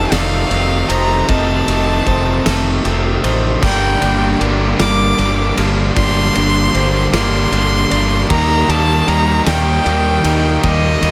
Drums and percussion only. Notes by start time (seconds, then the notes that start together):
0.12 snare, ride
0.51 ride
0.90 ride
1.29 kick, ride
1.68 ride
2.07 kick, ride
2.46 snare, ride
2.85 ride
3.24 ride
3.63 kick, crash
4.02 ride
4.41 ride
4.80 snare, ride
5.18 ride
5.57 ride
5.97 kick, ride
6.35 ride
6.74 ride
7.14 snare, ride
7.52 ride
7.91 ride
8.30 kick, ride
8.69 ride
9.08 ride
9.47 snare, ride
9.86 ride
10.24 ride
10.64 kick, ride
11.03 ride